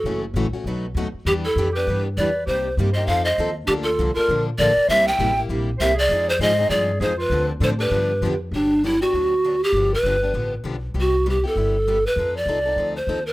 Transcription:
X:1
M:4/4
L:1/8
Q:"Swing" 1/4=198
K:C
V:1 name="Pan flute"
A z6 z | G A2 B2 z d2 | c2 z _e f e2 z | G A2 _B2 z d2 |
e g2 z3 e d- | d c _e2 d2 c B- | B z c B4 z | [K:G] D2 E F4 G- |
G B4 z3 | F2 G A4 B- | B d4 c2 B |]
V:2 name="Clarinet"
^F z6 z | E E2 G2 z B2 | G2 z c c c2 z | D F2 F2 z _B2 |
c e2 z3 c _A- | _A A c2 A2 A F- | F z A G4 z | [K:G] z8 |
z8 | z8 | z8 |]
V:3 name="Steel-string acoustic guitar"
[^C,E,A,^C^F] z [C,E,A,CF] [A,CF] [B,,^F,A,^DF] z [B,,F,A,DF] z | [E,B,DG] z [E,B,DG] [B,DG] [E,B,DG] z [E,B,DG] z | [C,G,_B,_EG] z [C,G,B,EG] [B,EG] [F,CEA] z [F,CEA] z | [D,F,_B,DA] z [D,F,B,DA] [B,DA] [D,F,B,DA] z [D,F,B,DA] z |
[C,G,_B,EG] z [C,G,B,EG] [B,EG] [C,G,B,EG] z [C,G,B,EG] z | [F,C_E_A] z [F,CEA] [CEA] [F,CEA] z [F,CEA] z | [D,F,CDA] z [D,F,CDA] [CDA] [D,F,B,DG] z [D,F,B,DG] z | [K:G] [D,F,B,DG] z [D,F,B,DG] [B,DG] [D,F,B,DG] z [D,F,B,DG] z |
[D,=F,B,DG] z [D,F,B,DG] [B,DG] [D,F,B,DG] z [D,F,B,DG] z | [C,G,B,EG] z [C,G,B,EG] [B,EG] [C,G,B,EG] z [C,G,B,EG] z | [=F,C_EA] z [F,CEA] [CEA] [F,CEA] z [F,CEA] z |]
V:4 name="Steel-string acoustic guitar"
[^F,^CEA] z [F,CEA] z [B,,F,A,^D^FB] z [B,,F,A,DFB] z | [E,G,DEB] z [E,G,DEB] z [E,G,DEB] z [E,G,DEB] z | [C,G,_B,_EG] z [C,G,B,EG] z [F,CEA] z [F,CEA] z | [D,F,_B,DA] z [D,F,B,DA] z [D,F,B,DA] z [D,F,B,DA] z |
[C,G,_B,EG] z [C,G,B,EG] z [C,G,B,EG] z [C,G,B,EG] z | [F,_A,_EFc] z [F,A,EFc] z [F,A,EFc] z [F,A,EFc] z | [D,F,CDA] z [D,F,CDA] z [D,F,B,DG] z [D,F,B,DG] z | [K:G] z8 |
z8 | z8 | z8 |]
V:5 name="Upright bass" clef=bass
^F,,,2 A,,, z B,,,2 ^D,, z | E,,2 F,,2 G,,2 E,,2 | C,,2 G,,2 F,,2 _E,,2 | D,,2 C,, z _B,,,2 A,,, z |
C,,2 A,,,2 _B,,,2 C,,2 | F,,2 _A,,2 G,,2 F,,2 | D,,2 A,,2 G,,2 F,,2 | [K:G] G,,,4 D,,4 |
G,,,2 G,,,2 A,,,2 B,,,2 | C,,4 G,,,4 | =F,,2 C,,2 D,,2 _E,,2 |]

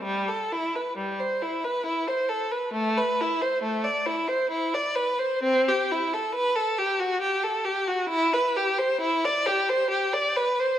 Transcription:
X:1
M:3/4
L:1/16
Q:1/4=67
K:Ador
V:1 name="Violin"
G, A E B G, c E B E c A B | A, B E c A, d E c E d B c | C G E A B A G F G A G F | [K:Em] E B G c E d G c G d B c |]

